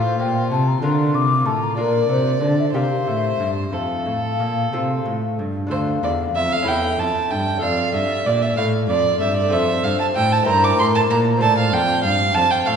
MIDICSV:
0, 0, Header, 1, 5, 480
1, 0, Start_track
1, 0, Key_signature, -1, "major"
1, 0, Tempo, 633580
1, 1342, Time_signature, 6, 3, 24, 8
1, 1827, Tempo, 657174
1, 4237, Key_signature, -1, "minor"
1, 4707, Tempo, 630915
1, 9583, End_track
2, 0, Start_track
2, 0, Title_t, "Violin"
2, 0, Program_c, 0, 40
2, 0, Note_on_c, 0, 65, 60
2, 608, Note_off_c, 0, 65, 0
2, 622, Note_on_c, 0, 65, 51
2, 1328, Note_off_c, 0, 65, 0
2, 1342, Note_on_c, 0, 74, 59
2, 2051, Note_off_c, 0, 74, 0
2, 2063, Note_on_c, 0, 72, 61
2, 2789, Note_on_c, 0, 69, 48
2, 2800, Note_off_c, 0, 72, 0
2, 3880, Note_off_c, 0, 69, 0
2, 4237, Note_on_c, 0, 72, 59
2, 4295, Note_off_c, 0, 72, 0
2, 4473, Note_on_c, 0, 74, 55
2, 4531, Note_off_c, 0, 74, 0
2, 4706, Note_on_c, 0, 76, 75
2, 4834, Note_on_c, 0, 77, 68
2, 4846, Note_off_c, 0, 76, 0
2, 4948, Note_on_c, 0, 79, 67
2, 4960, Note_off_c, 0, 77, 0
2, 5192, Note_on_c, 0, 81, 65
2, 5203, Note_off_c, 0, 79, 0
2, 5429, Note_on_c, 0, 79, 69
2, 5440, Note_off_c, 0, 81, 0
2, 5664, Note_off_c, 0, 79, 0
2, 5668, Note_on_c, 0, 77, 62
2, 5905, Note_off_c, 0, 77, 0
2, 5916, Note_on_c, 0, 76, 71
2, 6155, Note_on_c, 0, 74, 72
2, 6166, Note_off_c, 0, 76, 0
2, 6274, Note_on_c, 0, 76, 66
2, 6286, Note_off_c, 0, 74, 0
2, 6387, Note_off_c, 0, 76, 0
2, 6392, Note_on_c, 0, 77, 73
2, 6453, Note_off_c, 0, 77, 0
2, 6629, Note_on_c, 0, 74, 74
2, 6868, Note_off_c, 0, 74, 0
2, 6873, Note_on_c, 0, 76, 73
2, 6992, Note_off_c, 0, 76, 0
2, 6997, Note_on_c, 0, 74, 76
2, 7115, Note_on_c, 0, 76, 74
2, 7126, Note_off_c, 0, 74, 0
2, 7355, Note_on_c, 0, 77, 64
2, 7366, Note_off_c, 0, 76, 0
2, 7473, Note_off_c, 0, 77, 0
2, 7477, Note_on_c, 0, 81, 74
2, 7526, Note_off_c, 0, 81, 0
2, 7598, Note_on_c, 0, 79, 85
2, 7723, Note_on_c, 0, 81, 80
2, 7735, Note_off_c, 0, 79, 0
2, 7836, Note_off_c, 0, 81, 0
2, 7840, Note_on_c, 0, 82, 81
2, 7966, Note_on_c, 0, 86, 76
2, 7978, Note_off_c, 0, 82, 0
2, 8080, Note_off_c, 0, 86, 0
2, 8084, Note_on_c, 0, 84, 81
2, 8131, Note_off_c, 0, 84, 0
2, 8203, Note_on_c, 0, 81, 84
2, 8250, Note_off_c, 0, 81, 0
2, 8319, Note_on_c, 0, 82, 72
2, 8379, Note_off_c, 0, 82, 0
2, 8557, Note_on_c, 0, 81, 87
2, 8671, Note_off_c, 0, 81, 0
2, 8680, Note_on_c, 0, 77, 76
2, 8796, Note_on_c, 0, 79, 88
2, 8808, Note_off_c, 0, 77, 0
2, 9026, Note_off_c, 0, 79, 0
2, 9031, Note_on_c, 0, 77, 89
2, 9264, Note_on_c, 0, 81, 93
2, 9276, Note_off_c, 0, 77, 0
2, 9387, Note_on_c, 0, 79, 81
2, 9399, Note_off_c, 0, 81, 0
2, 9502, Note_on_c, 0, 77, 82
2, 9514, Note_off_c, 0, 79, 0
2, 9583, Note_off_c, 0, 77, 0
2, 9583, End_track
3, 0, Start_track
3, 0, Title_t, "Flute"
3, 0, Program_c, 1, 73
3, 0, Note_on_c, 1, 77, 67
3, 147, Note_off_c, 1, 77, 0
3, 153, Note_on_c, 1, 79, 73
3, 381, Note_off_c, 1, 79, 0
3, 391, Note_on_c, 1, 81, 64
3, 514, Note_on_c, 1, 82, 65
3, 525, Note_off_c, 1, 81, 0
3, 623, Note_off_c, 1, 82, 0
3, 627, Note_on_c, 1, 84, 75
3, 871, Note_on_c, 1, 86, 87
3, 883, Note_off_c, 1, 84, 0
3, 1106, Note_on_c, 1, 81, 76
3, 1117, Note_off_c, 1, 86, 0
3, 1237, Note_on_c, 1, 82, 63
3, 1249, Note_off_c, 1, 81, 0
3, 1347, Note_off_c, 1, 82, 0
3, 1351, Note_on_c, 1, 70, 65
3, 1583, Note_off_c, 1, 70, 0
3, 1595, Note_on_c, 1, 72, 61
3, 1828, Note_off_c, 1, 72, 0
3, 1841, Note_on_c, 1, 74, 64
3, 1950, Note_off_c, 1, 74, 0
3, 1961, Note_on_c, 1, 76, 55
3, 2005, Note_off_c, 1, 76, 0
3, 2070, Note_on_c, 1, 77, 61
3, 2312, Note_on_c, 1, 76, 70
3, 2323, Note_off_c, 1, 77, 0
3, 2622, Note_off_c, 1, 76, 0
3, 2786, Note_on_c, 1, 77, 53
3, 3969, Note_off_c, 1, 77, 0
3, 4238, Note_on_c, 1, 77, 65
3, 4957, Note_on_c, 1, 76, 58
3, 4969, Note_off_c, 1, 77, 0
3, 5677, Note_on_c, 1, 74, 59
3, 5688, Note_off_c, 1, 76, 0
3, 6390, Note_off_c, 1, 74, 0
3, 6395, Note_on_c, 1, 69, 55
3, 7103, Note_off_c, 1, 69, 0
3, 7112, Note_on_c, 1, 72, 60
3, 7834, Note_on_c, 1, 70, 66
3, 7846, Note_off_c, 1, 72, 0
3, 8551, Note_off_c, 1, 70, 0
3, 8557, Note_on_c, 1, 74, 70
3, 9048, Note_off_c, 1, 74, 0
3, 9268, Note_on_c, 1, 72, 57
3, 9583, Note_off_c, 1, 72, 0
3, 9583, End_track
4, 0, Start_track
4, 0, Title_t, "Lute"
4, 0, Program_c, 2, 24
4, 0, Note_on_c, 2, 45, 42
4, 0, Note_on_c, 2, 60, 36
4, 0, Note_on_c, 2, 65, 36
4, 0, Note_on_c, 2, 72, 34
4, 123, Note_off_c, 2, 45, 0
4, 149, Note_on_c, 2, 46, 49
4, 361, Note_off_c, 2, 46, 0
4, 390, Note_on_c, 2, 48, 49
4, 591, Note_off_c, 2, 60, 0
4, 594, Note_off_c, 2, 65, 0
4, 597, Note_off_c, 2, 72, 0
4, 601, Note_off_c, 2, 48, 0
4, 621, Note_on_c, 2, 50, 49
4, 625, Note_on_c, 2, 62, 38
4, 628, Note_on_c, 2, 65, 40
4, 633, Note_on_c, 2, 70, 40
4, 837, Note_off_c, 2, 50, 0
4, 866, Note_on_c, 2, 48, 43
4, 1080, Note_off_c, 2, 48, 0
4, 1103, Note_on_c, 2, 45, 49
4, 1312, Note_off_c, 2, 62, 0
4, 1315, Note_off_c, 2, 65, 0
4, 1317, Note_off_c, 2, 70, 0
4, 1318, Note_off_c, 2, 45, 0
4, 1339, Note_on_c, 2, 46, 39
4, 1342, Note_on_c, 2, 62, 30
4, 1347, Note_on_c, 2, 65, 30
4, 1350, Note_on_c, 2, 70, 31
4, 1558, Note_off_c, 2, 46, 0
4, 1584, Note_on_c, 2, 48, 44
4, 1803, Note_off_c, 2, 48, 0
4, 1823, Note_on_c, 2, 50, 44
4, 2035, Note_off_c, 2, 62, 0
4, 2038, Note_off_c, 2, 65, 0
4, 2039, Note_off_c, 2, 50, 0
4, 2039, Note_off_c, 2, 70, 0
4, 2065, Note_on_c, 2, 48, 45
4, 2067, Note_on_c, 2, 60, 34
4, 2070, Note_on_c, 2, 67, 36
4, 2074, Note_on_c, 2, 70, 33
4, 2281, Note_off_c, 2, 48, 0
4, 2307, Note_on_c, 2, 45, 36
4, 2523, Note_off_c, 2, 45, 0
4, 2549, Note_on_c, 2, 43, 43
4, 2759, Note_off_c, 2, 60, 0
4, 2762, Note_off_c, 2, 67, 0
4, 2763, Note_off_c, 2, 70, 0
4, 2766, Note_off_c, 2, 43, 0
4, 2786, Note_on_c, 2, 41, 36
4, 3006, Note_off_c, 2, 41, 0
4, 3031, Note_on_c, 2, 45, 42
4, 3249, Note_off_c, 2, 45, 0
4, 3277, Note_on_c, 2, 46, 41
4, 3494, Note_off_c, 2, 46, 0
4, 3518, Note_on_c, 2, 48, 42
4, 3521, Note_on_c, 2, 60, 33
4, 3524, Note_on_c, 2, 69, 37
4, 3526, Note_on_c, 2, 65, 34
4, 3736, Note_off_c, 2, 48, 0
4, 3758, Note_on_c, 2, 45, 42
4, 3972, Note_off_c, 2, 60, 0
4, 3975, Note_off_c, 2, 45, 0
4, 4003, Note_on_c, 2, 43, 38
4, 4205, Note_on_c, 2, 62, 34
4, 4207, Note_off_c, 2, 65, 0
4, 4211, Note_off_c, 2, 69, 0
4, 4215, Note_off_c, 2, 43, 0
4, 4216, Note_on_c, 2, 65, 33
4, 4227, Note_on_c, 2, 69, 35
4, 4237, Note_on_c, 2, 38, 39
4, 4448, Note_off_c, 2, 38, 0
4, 4470, Note_on_c, 2, 40, 44
4, 4681, Note_off_c, 2, 40, 0
4, 4706, Note_on_c, 2, 41, 46
4, 4907, Note_off_c, 2, 62, 0
4, 4910, Note_on_c, 2, 61, 44
4, 4916, Note_off_c, 2, 65, 0
4, 4922, Note_off_c, 2, 69, 0
4, 4922, Note_on_c, 2, 64, 43
4, 4925, Note_off_c, 2, 41, 0
4, 4936, Note_on_c, 2, 69, 43
4, 4945, Note_on_c, 2, 40, 50
4, 5164, Note_off_c, 2, 40, 0
4, 5187, Note_on_c, 2, 41, 43
4, 5405, Note_off_c, 2, 41, 0
4, 5428, Note_on_c, 2, 43, 47
4, 5629, Note_off_c, 2, 61, 0
4, 5632, Note_off_c, 2, 64, 0
4, 5635, Note_on_c, 2, 62, 38
4, 5636, Note_off_c, 2, 69, 0
4, 5645, Note_off_c, 2, 43, 0
4, 5646, Note_on_c, 2, 69, 40
4, 5669, Note_on_c, 2, 41, 45
4, 5886, Note_off_c, 2, 41, 0
4, 5909, Note_on_c, 2, 43, 47
4, 6127, Note_off_c, 2, 43, 0
4, 6155, Note_on_c, 2, 46, 46
4, 6370, Note_off_c, 2, 46, 0
4, 6396, Note_on_c, 2, 45, 49
4, 6610, Note_off_c, 2, 45, 0
4, 6643, Note_on_c, 2, 41, 49
4, 6856, Note_off_c, 2, 41, 0
4, 6879, Note_on_c, 2, 43, 52
4, 7068, Note_off_c, 2, 62, 0
4, 7073, Note_off_c, 2, 69, 0
4, 7088, Note_on_c, 2, 60, 39
4, 7095, Note_off_c, 2, 43, 0
4, 7100, Note_on_c, 2, 65, 42
4, 7110, Note_on_c, 2, 69, 36
4, 7123, Note_on_c, 2, 41, 43
4, 7337, Note_off_c, 2, 60, 0
4, 7338, Note_off_c, 2, 41, 0
4, 7361, Note_on_c, 2, 43, 46
4, 7577, Note_off_c, 2, 43, 0
4, 7601, Note_on_c, 2, 45, 51
4, 7808, Note_on_c, 2, 60, 45
4, 7810, Note_off_c, 2, 65, 0
4, 7815, Note_off_c, 2, 69, 0
4, 7816, Note_on_c, 2, 64, 46
4, 7817, Note_off_c, 2, 45, 0
4, 7830, Note_on_c, 2, 72, 49
4, 7840, Note_on_c, 2, 43, 53
4, 8055, Note_off_c, 2, 43, 0
4, 8056, Note_off_c, 2, 60, 0
4, 8082, Note_on_c, 2, 45, 45
4, 8295, Note_off_c, 2, 45, 0
4, 8320, Note_on_c, 2, 46, 56
4, 8521, Note_off_c, 2, 64, 0
4, 8523, Note_on_c, 2, 60, 41
4, 8528, Note_off_c, 2, 72, 0
4, 8532, Note_off_c, 2, 46, 0
4, 8535, Note_on_c, 2, 65, 45
4, 8546, Note_on_c, 2, 72, 41
4, 8557, Note_on_c, 2, 45, 53
4, 8769, Note_off_c, 2, 45, 0
4, 8798, Note_on_c, 2, 41, 51
4, 9009, Note_off_c, 2, 41, 0
4, 9035, Note_on_c, 2, 43, 52
4, 9246, Note_off_c, 2, 43, 0
4, 9270, Note_on_c, 2, 41, 57
4, 9483, Note_off_c, 2, 41, 0
4, 9505, Note_on_c, 2, 45, 52
4, 9583, Note_off_c, 2, 45, 0
4, 9583, Note_off_c, 2, 60, 0
4, 9583, Note_off_c, 2, 65, 0
4, 9583, Note_off_c, 2, 72, 0
4, 9583, End_track
5, 0, Start_track
5, 0, Title_t, "Cello"
5, 0, Program_c, 3, 42
5, 0, Note_on_c, 3, 45, 56
5, 138, Note_off_c, 3, 45, 0
5, 144, Note_on_c, 3, 46, 55
5, 381, Note_on_c, 3, 48, 62
5, 393, Note_off_c, 3, 46, 0
5, 616, Note_off_c, 3, 48, 0
5, 620, Note_on_c, 3, 50, 57
5, 864, Note_on_c, 3, 48, 52
5, 875, Note_off_c, 3, 50, 0
5, 1099, Note_on_c, 3, 45, 52
5, 1111, Note_off_c, 3, 48, 0
5, 1339, Note_on_c, 3, 46, 60
5, 1350, Note_off_c, 3, 45, 0
5, 1577, Note_off_c, 3, 46, 0
5, 1582, Note_on_c, 3, 48, 57
5, 1821, Note_off_c, 3, 48, 0
5, 1824, Note_on_c, 3, 50, 52
5, 2059, Note_off_c, 3, 50, 0
5, 2064, Note_on_c, 3, 48, 54
5, 2122, Note_off_c, 3, 48, 0
5, 2305, Note_on_c, 3, 45, 43
5, 2538, Note_off_c, 3, 45, 0
5, 2542, Note_on_c, 3, 43, 43
5, 2781, Note_off_c, 3, 43, 0
5, 2785, Note_on_c, 3, 41, 48
5, 3031, Note_on_c, 3, 45, 46
5, 3042, Note_off_c, 3, 41, 0
5, 3271, Note_on_c, 3, 46, 44
5, 3282, Note_off_c, 3, 45, 0
5, 3508, Note_off_c, 3, 46, 0
5, 3512, Note_on_c, 3, 48, 51
5, 3751, Note_off_c, 3, 48, 0
5, 3759, Note_on_c, 3, 45, 43
5, 4001, Note_on_c, 3, 43, 45
5, 4012, Note_off_c, 3, 45, 0
5, 4231, Note_off_c, 3, 43, 0
5, 4236, Note_on_c, 3, 38, 55
5, 4454, Note_off_c, 3, 38, 0
5, 4470, Note_on_c, 3, 40, 54
5, 4697, Note_off_c, 3, 40, 0
5, 4701, Note_on_c, 3, 41, 54
5, 4942, Note_off_c, 3, 41, 0
5, 4951, Note_on_c, 3, 40, 54
5, 5184, Note_off_c, 3, 40, 0
5, 5189, Note_on_c, 3, 41, 50
5, 5249, Note_off_c, 3, 41, 0
5, 5433, Note_on_c, 3, 43, 53
5, 5667, Note_off_c, 3, 43, 0
5, 5671, Note_on_c, 3, 41, 57
5, 5903, Note_off_c, 3, 41, 0
5, 5907, Note_on_c, 3, 43, 51
5, 5968, Note_off_c, 3, 43, 0
5, 6152, Note_on_c, 3, 46, 55
5, 6382, Note_off_c, 3, 46, 0
5, 6387, Note_on_c, 3, 45, 60
5, 6631, Note_on_c, 3, 41, 56
5, 6642, Note_off_c, 3, 45, 0
5, 6865, Note_off_c, 3, 41, 0
5, 6870, Note_on_c, 3, 43, 59
5, 7115, Note_on_c, 3, 41, 66
5, 7126, Note_off_c, 3, 43, 0
5, 7354, Note_off_c, 3, 41, 0
5, 7359, Note_on_c, 3, 43, 58
5, 7420, Note_off_c, 3, 43, 0
5, 7600, Note_on_c, 3, 45, 58
5, 7835, Note_off_c, 3, 45, 0
5, 7839, Note_on_c, 3, 43, 67
5, 8071, Note_off_c, 3, 43, 0
5, 8076, Note_on_c, 3, 45, 61
5, 8311, Note_off_c, 3, 45, 0
5, 8316, Note_on_c, 3, 46, 61
5, 8545, Note_off_c, 3, 46, 0
5, 8549, Note_on_c, 3, 45, 67
5, 8790, Note_on_c, 3, 41, 63
5, 8802, Note_off_c, 3, 45, 0
5, 9026, Note_on_c, 3, 43, 64
5, 9037, Note_off_c, 3, 41, 0
5, 9257, Note_off_c, 3, 43, 0
5, 9262, Note_on_c, 3, 41, 62
5, 9323, Note_off_c, 3, 41, 0
5, 9501, Note_on_c, 3, 45, 59
5, 9583, Note_off_c, 3, 45, 0
5, 9583, End_track
0, 0, End_of_file